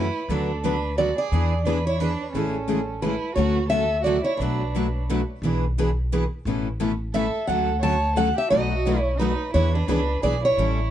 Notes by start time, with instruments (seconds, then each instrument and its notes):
Already playing: violin E4, steel-string acoustic guitar B4
0.29 upright bass D2, steel-string acoustic guitar D3 F#3 A3 B3 D4 F#4 A4 B4, violin D4
0.63 steel-string acoustic guitar D3 F#3 A3 B3 D4 F#4 B4, violin D4
0.98 steel-string acoustic guitar D3 F#3 A3 B3 D4 F#4 B4 D5, violin F#4
1.18 violin G#4, steel-string acoustic guitar D5
1.32 upright bass E2, steel-string acoustic guitar E3 B3 D4 G#4 B4
1.65 steel-string acoustic guitar E3 B3 D4 G#4 B4, violin D4
1.87 violin E4, steel-string acoustic guitar C#5
2.00 steel-string acoustic guitar E3 B3 D4 G#4 B4, violin D4
2.33 upright bass A1, steel-string acoustic guitar C#3 E3 G#3 A3 C#4 E4 G#4 A4, violin C#4
2.37 steel-string acoustic guitar A4
2.68 steel-string acoustic guitar C#3 E3 G#3 A3 C#4 E4 G#4 A4
3.02 steel-string acoustic guitar C#3 E3 G#3 A3 C#4 E4 G#4 A4 B4, violin E4
3.35 upright bass D2, steel-string acoustic guitar D3 F#3 A3 C#4 F#4 C#5, violin F#4
3.39 steel-string acoustic guitar A4
3.68 steel-string acoustic guitar F#3 E5, violin A4
3.72 steel-string acoustic guitar D3 A3 C#4 F#4 A4
4.02 steel-string acoustic guitar D3 F#3 A3 D5, violin F#4
4.06 steel-string acoustic guitar C#4 F#4 A4
4.23 violin E4, steel-string acoustic guitar C#5
4.37 upright bass B1, steel-string acoustic guitar B2 F#3 A3 D4 B4, violin D4
4.42 steel-string acoustic guitar F#4 B4
4.75 steel-string acoustic guitar B2 F#3 A3 D4 F#4 B4
5.09 steel-string acoustic guitar B2 F#3 A3 D4 F#4 B4
5.42 upright bass B1, steel-string acoustic guitar B2 E3 B3 D4 G#4 B4
5.78 steel-string acoustic guitar B2 E3 B3 D4 G#4 B4
6.12 steel-string acoustic guitar B2 E3 B3 D4 G#4 B4
6.45 upright bass A1, steel-string acoustic guitar B2 E3 A3 C#4 E4 A4 B4
6.80 steel-string acoustic guitar B2 E3 A3 C#4 E4 A4 B4
7.14 steel-string acoustic guitar B2 E3 A3 C#4 E4 A4 B4 E5, violin A4
7.47 upright bass D2, steel-string acoustic guitar D3 F#3 A3 C#4 F#4 A4 F#5, violin A4
7.81 steel-string acoustic guitar D3 F#3 A3 C#4 F#4 A4 A5, violin C#5
8.15 steel-string acoustic guitar D3 F#3 A3 C#4 F#4 A4 F#5, violin A4
8.36 violin G4, steel-string acoustic guitar E5
8.49 upright bass B1, steel-string acoustic guitar B2 F#3 A3 D#4 F#4 B4 D#5, violin F#4
8.86 steel-string acoustic guitar B2 F#3 A3 D#4 F#4 B4
8.98 violin E4
9.03 steel-string acoustic guitar C#5
9.17 steel-string acoustic guitar B2 B4, violin D#4
9.21 steel-string acoustic guitar F#3 A3 D#4 F#4 B4
9.53 upright bass E2, steel-string acoustic guitar E3 B3 D4 G#4 B4 C#5, violin E4
9.74 violin D4, steel-string acoustic guitar B4
9.88 upright bass C#2, steel-string acoustic guitar E3 B3 D4 G#4 B4, violin D4
10.23 upright bass B1, steel-string acoustic guitar E3 B3 D4 G#4 B4 D5, violin G#4
10.43 violin E4, steel-string acoustic guitar C#5
10.57 upright bass A1, steel-string acoustic guitar E3 G3 C#4 E4 A4